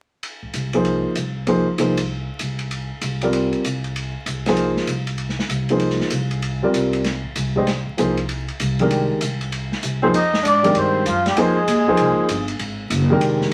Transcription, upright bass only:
0.54 C2
1.16 C2
1.78 C2
2.40 C2
3.01 C2
3.64 C2
4.26 C2
4.86 C2
5.49 C2
6.11 C2
6.74 C2
7.36 C2
7.98 C2
8.60 C2
9.21 C2
9.83 C2
10.14 F2
10.44 G#2
10.75 G2
11.06 F#2
11.37 F2
11.67 D#2
11.99 C2
12.18 muted upright bass stroke
12.28 G1
12.59 G#1
12.90 F#1
13.21 F1

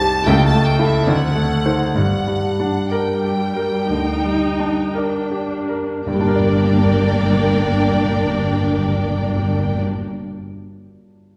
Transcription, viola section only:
0.27 A3 E4
1.08 C4 D#4
2.92 G3
3.90 D#4
4.95 D4
6.07 A#3 D4

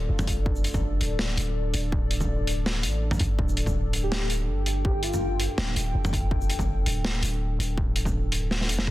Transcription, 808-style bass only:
0.09 F1
1.01 D1
1.37 D1
1.74 D1
2.84 A1
3.20 G1
3.39 D1
4.48 G1
5.58 D1
5.76 D1
5.95 F1
6.86 D1
7.22 D1
7.59 D1
8.69 F1
8.87 A1

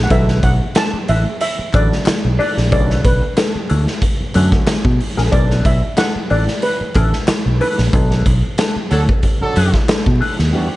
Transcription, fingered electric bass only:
0.11 B1
0.43 B1
0.93 muted fingered electric bass stroke
1.09 A1
1.59 muted fingered electric bass stroke
1.74 A1
2.07 muted fingered electric bass stroke
2.25 B1
2.57 A#1
2.72 B1
3.05 B1
3.55 muted fingered electric bass stroke
3.71 D2
4.20 muted fingered electric bass stroke
4.36 F#2
4.85 B2
5.18 A#1
5.33 B1
5.65 B1
6.16 muted fingered electric bass stroke
6.31 A1
6.81 muted fingered electric bass stroke
6.96 A1
7.29 muted fingered electric bass stroke
7.46 B1
7.79 A#1
7.93 B1
8.26 B1
8.76 muted fingered electric bass stroke
8.91 D2
9.41 muted fingered electric bass stroke
9.57 F#2
10.07 B2
10.39 D#2

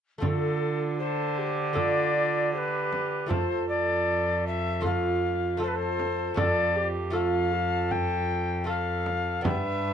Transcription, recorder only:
0.22 A4
0.98 C5
1.77 D5
2.53 C5
2.57 B4
3.28 C5
3.68 D5
4.46 E5
4.85 F5
5.62 C5
5.67 B4
5.75 C5
6.37 D5
7.14 F5
7.91 G5
8.68 F5
9.45 E5

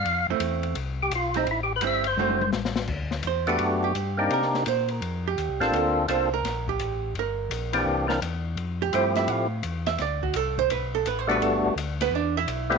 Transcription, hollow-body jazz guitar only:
0.30 A3 C4 E4
1.36 G3 C4 E4
1.82 G3 C4 E4
2.19 D3 A3 C4 F#4
3.27 C5
3.49 B4
3.84 G4
4.34 A#4
4.68 C5
4.91 A#4
5.28 G4
5.76 A4
6.11 C5
6.34 A#4
6.69 G4
7.19 A#4
8.82 G4
8.95 C5
9.16 E5
9.29 F5
9.87 E5
10.02 D5
10.23 F#4
10.36 A4
10.59 C5
10.71 B4
10.95 A4
11.07 B4
11.19 C5
11.31 B4
11.42 A4
12.02 B3 B4
12.15 D4 D5
12.37 E4 E5

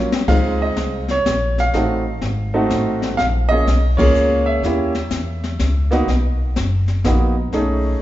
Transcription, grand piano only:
0.28 G#3 C4 D#4 F4 F5
0.62 D#5
1.11 C#5
1.60 F5
1.74 A3 C4 D#4 F#4
2.54 A3 C4 D#4 F#4
3.17 F5
3.49 A#3 C#4 F4 G#4 D#5
3.97 A#3 C#4 F4 G#4 C#5
4.46 E5
4.65 A#3 C#4 E4 G4
5.91 A#3 B3 D#4 F#4
7.04 A#3 B3 D#4 F#4
7.53 A3 C#4 D#4 G#4

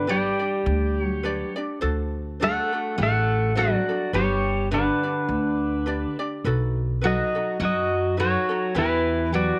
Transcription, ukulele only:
0.07 D4 G4 B4 D5
0.39 D4 G4 D5
1.23 D4 G4 B4 D5
1.56 D4 G4 D5
1.81 D4 F#4 A4 C5
2.40 D4 F#4 A4 C5
2.73 D4 F#4 A4
3.55 D4 F#4 A4 C5
3.89 D4 F#4 A4
4.13 D4 G4 B4
4.71 D4 G4 B4 D5
5.03 D4 G4 D5
5.86 D4 G4 B4 D5
6.19 D4 G4 D5
6.45 D#4 F#4 A4 B4
7.01 D#4 F#4 A4 B4
7.35 D#4 F#4 A4
8.17 D#4 F#4 A4 B4
8.49 D#4 F#4 A4
8.75 E4 F#4 G4 B4
9.32 E4 F#4 G4 B4

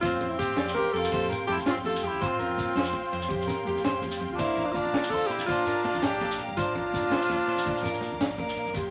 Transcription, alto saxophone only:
0.01 F4
0.29 E4
0.38 G4
0.74 A#4
0.92 A4
1.47 G4
1.66 F4
1.86 A4
2.05 G4
2.23 F4
4.32 F4
4.39 E4
4.65 D4
4.72 F4
5.10 A4
5.27 G4
5.46 F4
6.03 G4
6.57 F4

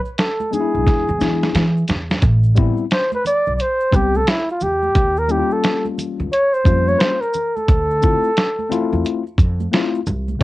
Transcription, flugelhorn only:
0.19 A4
0.53 G#4
2.93 C5
3.15 B4
3.27 D5
3.56 D5
3.61 C5
3.96 G4
4.17 A4
4.29 E4
4.51 F4
4.63 G4
5.19 A#4
5.32 G4
5.53 A4
6.32 C#5
6.54 C5
6.88 C#5
6.98 B4 C5
7.21 A#4
7.56 A4

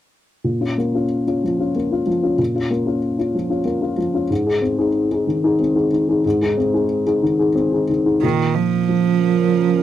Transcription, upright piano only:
0.44 A#2
0.61 C#4 F4
0.78 A#3
0.94 C#4 F4
1.27 C#4 F4
1.44 F3
1.60 C#4 F4
1.76 A#3
1.91 C#4 F4
2.07 F3
2.23 C#4 F4
2.38 A#2
2.55 C#4 F4
2.70 A#3
2.87 C#4 F4
3.19 C#4 F4
3.35 F3
3.50 C#4 F4
3.65 A#3
3.82 C#4 F4
3.97 F3
4.14 C#4 F4
4.30 G#2
4.46 D#4 G#4
4.62 C4
4.78 D#4 G#4
5.11 D#4 G#4
5.27 D#3
5.44 D#4 G#4
5.59 C4
5.76 D#4 G#4
5.92 D#3
6.08 D#4 G#4
6.25 G#2
6.42 D#4 G#4
6.57 C4
6.74 D#4 G#4
7.07 D#4 G#4
7.22 D#3
7.39 D#4 G#4
7.55 C4
7.72 D#4 G#4
7.89 D#3
8.06 D#4 G#4
8.23 A#2
8.88 F3

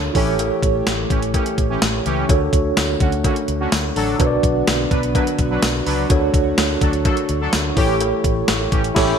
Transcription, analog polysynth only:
0.15 E3 C#4 G4
1.10 E3 C#4 G4
1.34 E3 C#4 G4
1.70 E3 C#4 G4
2.05 E3 C#4 G4
3.01 D3 C#4 F#4
3.25 D3 C#4 F#4
3.60 D3 C#4 F#4
3.96 F#3 D4 A4
4.91 F#3 D4 B4
5.15 F#3 D4 B4
5.50 F#3 D4 B4
5.86 F#3 D4 B4
6.81 F#3 D4 A4
7.05 F#3 D4 A4
7.41 F#3 D4 A4
7.76 E3 C#4 G4
8.71 E3 C#4 G4
8.95 E3 C#4 G4

